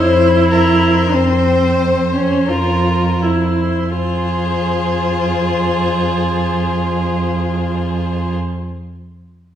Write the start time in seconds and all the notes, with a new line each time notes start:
Already playing: F2 E4 C5
0.51 A#4 C5
1.14 F2 C4 C5
1.81 C5
2.14 C#4
2.48 F2 F4 A#4
3.22 E4 C5
3.95 F2 F4 G#4 C5